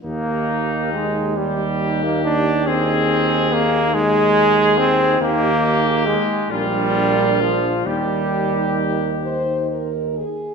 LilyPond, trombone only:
\new Staff \with { instrumentName = "Trombone" } { \time 6/8 \key ees \major \tempo 4. = 46 bes4 aes8 g8. bes16 d'8 | c'4 bes8 aes4 c'8 | bes4 aes8 g4 f8 | g4. r4. | }